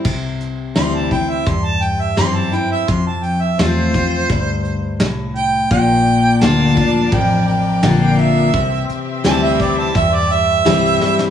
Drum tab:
CC |x---------------|----------------|----------------|----------------|
HH |--x-x-x-x-x-x-x-|x-x-x-x-x-x-x-x-|x-x-x-x-x-x-x-x-|x-x-x-x-x-x-x---|
SD |----o-------o---|----o-------o---|----o-------o---|----o-------o-oo|
BD |o-----o-o-------|o-----o-o-------|o-----o-o-------|o-----o-o-------|